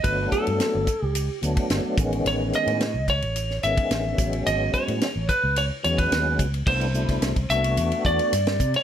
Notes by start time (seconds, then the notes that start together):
0.03 G1 F#3 A3 B3 D4 B4, kick, hi-hat pedal, ride
0.32 A4, kick, hi-hat pedal, ride
0.47 G2, ride
0.60 snare, hi-hat pedal, ride
0.75 G1
0.87 kick, hi-hat pedal, ride
1.02 C#2 G4
1.15 hi-hat pedal, ride
1.41 D2 F#3 A3 B3 D4, hi-hat pedal, ride
1.57 kick, ride
1.70 G1, snare, hi-hat pedal, ride
1.84 muted fretless electric bass stroke
1.97 A1 D#3 G#3 B3 C#4, kick, hi-hat pedal, ride
2.13 ride
2.25 A1 C#5, hi-hat pedal, ride
2.53 D#5, hi-hat pedal, ride
2.67 A2, ride
2.80 snare, hi-hat pedal, ride
2.94 C#2
3.08 C#5, kick, hi-hat pedal, ride
3.22 A1, ride
3.36 hi-hat pedal, ride
3.51 snare
3.63 G#1 D#3 G#3 B3 C#4 E5, hi-hat pedal, ride
3.77 kick, ride
3.91 A1, snare, hi-hat pedal, ride
4.17 A1 F#3 G#3 B3 C#4, kick, hi-hat pedal, ride
4.33 ride
4.46 G#1 D#5, hi-hat pedal, ride
4.74 C#5, kick, hi-hat pedal, ride
4.88 A2, ride
5.01 snare, hi-hat pedal, ride
5.16 A1
5.29 B4, kick, hi-hat pedal, ride
5.44 C#2
5.56 C#5, hi-hat pedal, ride
5.83 E2 F#3 G#3 B3 C#4 C#5, hi-hat pedal, ride
5.98 B4, kick, ride
6.12 D#2, snare, hi-hat pedal, ride
6.39 C#2, kick, hi-hat pedal, ride
6.54 ride
6.66 C2 A3 B3 D4 E4 C5, kick, crash
6.81 ride
6.94 B2 A3 D4 E4, hi-hat pedal
7.09 C2, kick, snare, ride
7.22 C2, snare, hi-hat pedal, ride
7.36 C2, kick, ride
7.49 C2 A3 B3 D4 F#4 E5, snare, hi-hat pedal
7.64 ride
7.77 E2, hi-hat pedal, ride
7.92 ride
8.05 E2 D5, kick, hi-hat pedal
8.19 ride
8.33 G2, snare, hi-hat pedal, ride
8.47 snare, ride
8.60 C3, kick, hi-hat pedal
8.74 C#5, muted fretless electric bass stroke, ride